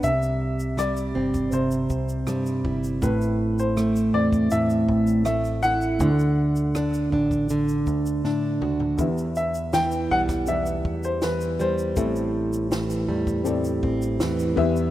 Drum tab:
SH |xx-xxx-xxxxxxx-x|xx-xxx-xxx-xxxxx|xx-xxx-xxxxx----|xxxxxx-xxx-xxxxx|
SD |----r--r----r---|----r-------r---|----r-------o---|----o--o----o---|
T2 |----------------|----------------|--------------o-|----------------|
FT |----------------|----------------|---------------o|----------------|
BD |o------o--o---o-|o------o--o-----|o-----oo--o-----|o------o--o-----|

SH |xx-xxx-xxx-xxx-x|
SD |----o-------o---|
T2 |----------------|
FT |----------------|
BD |o------o--o---o-|